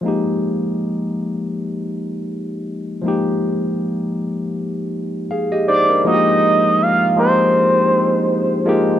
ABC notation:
X:1
M:4/4
L:1/16
Q:"Swing 16ths" 1/4=80
K:Fdor
V:1 name="Analog synth lead"
z16 | z12 z2 d2 | e4 f2 c8 z2 |]
V:2 name="Tine electric piano"
z16 | z12 [Af] [Ge] [Ec] [DB]- | [DB] z12 z3 |]
V:3 name="Tine electric piano"
[F,A,B,EG]16 | [F,A,B,EG]16 | [F,A,B,E_G=G]4 z2 [F,A,B,EG]6 z2 [F,A,B,EG]2 |]